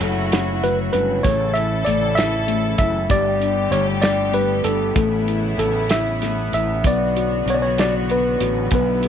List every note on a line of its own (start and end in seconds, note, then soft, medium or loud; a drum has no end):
0.00 0.90 F#1 loud
0.00 3.06 C#3 medium
0.00 0.61 F#3 medium
0.00 1.23 F#3 medium
0.00 3.06 A3 medium
0.00 0.31 C#4 medium
0.00 1.22 E4 medium
0.00 1.22 F#4 medium
0.00 1.22 A4 medium
0.00 closed hi-hat medium
0.32 0.92 C#4 medium
0.32 snare loud
0.32 closed hi-hat medium
0.63 1.23 F#3 medium
0.63 0.77 B4 loud
0.63 closed hi-hat medium
0.93 1.23 G1 loud
0.93 1.24 C#4 medium
0.93 1.25 B4 loud
0.93 closed hi-hat medium
1.23 1.83 A1 loud
1.23 3.09 E3 medium
1.23 1.85 A3 medium
1.23 3.09 E4 medium
1.23 3.09 A4 loud
1.23 1.56 C#5 loud
1.23 kick loud
1.23 closed hi-hat loud
1.54 2.15 E4 medium
1.54 1.87 E5 loud
1.54 closed hi-hat medium
1.85 2.75 A1 loud
1.85 2.46 A3 medium
1.85 2.18 D5 loud
1.85 closed hi-hat medium
2.15 2.78 E4 medium
2.15 2.74 E5 loud
2.15 snare loud
2.15 closed hi-hat medium
2.47 3.08 A3 medium
2.47 closed hi-hat medium
2.78 3.08 F#1 loud
2.78 3.09 E4 medium
2.78 3.08 E5 loud
2.78 kick loud
2.78 closed hi-hat medium
3.09 3.69 G1 loud
3.09 4.94 D3 medium
3.09 3.70 G3 medium
3.09 4.94 G3 medium
3.09 6.80 A3 medium
3.09 9.08 B3 medium
3.09 4.94 G4 medium
3.09 3.74 D5 loud
3.09 kick loud
3.09 closed hi-hat loud
3.40 4.01 D4 medium
3.40 closed hi-hat medium
3.71 4.61 G1 loud
3.71 4.31 G3 medium
3.71 3.86 C#5 loud
3.71 closed hi-hat medium
4.02 4.63 D4 medium
4.02 4.34 D5 loud
4.02 snare loud
4.02 closed hi-hat loud
4.32 4.94 G3 medium
4.32 4.66 B4 loud
4.32 closed hi-hat medium
4.64 4.94 G1 loud
4.64 4.95 D4 medium
4.64 5.58 A4 medium
4.64 closed hi-hat medium
4.95 5.55 A1 loud
4.95 6.82 C#3 medium
4.95 6.82 E3 medium
4.95 5.57 A3 medium
4.95 6.82 E4 medium
4.95 kick loud
4.95 closed hi-hat loud
5.27 5.88 E4 medium
5.27 closed hi-hat medium
5.58 6.48 A1 loud
5.58 6.20 A3 medium
5.58 5.91 A4 medium
5.58 closed hi-hat medium
5.89 6.52 E4 medium
5.89 6.53 E5 loud
5.89 snare loud
5.89 closed hi-hat medium
6.22 6.82 A3 medium
6.22 snare soft
6.22 closed hi-hat medium
6.53 6.85 A1 medium
6.53 6.84 E4 medium
6.53 6.86 E5 medium
6.53 closed hi-hat medium
6.84 7.43 B1 loud
6.84 8.69 C#3 medium
6.84 9.08 D3 medium
6.84 8.70 F#3 medium
6.84 7.46 B3 medium
6.84 8.70 F#4 medium
6.84 7.50 D5 loud
6.84 kick loud
6.84 closed hi-hat loud
7.16 7.77 F#4 medium
7.16 closed hi-hat medium
7.46 8.36 B1 loud
7.46 8.09 B3 medium
7.46 closed hi-hat medium
7.50 7.56 C#5 loud
7.54 7.61 D5 medium
7.62 7.79 C#5 loud
7.78 8.39 F#4 medium
7.78 7.94 D5 loud
7.78 snare loud
7.78 closed hi-hat medium
8.09 8.70 B3 medium
8.09 8.69 B4 medium
8.09 closed hi-hat medium
8.40 8.70 A1 medium
8.40 8.71 F#4 medium
8.40 closed hi-hat medium
8.71 9.08 B1 loud
8.71 9.08 E3 medium
8.71 9.08 G#3 medium
8.71 9.08 B3 medium
8.71 9.08 E4 medium
8.71 9.08 B4 medium
8.71 kick loud
8.71 closed hi-hat loud
9.03 9.08 G#4 medium
9.03 closed hi-hat medium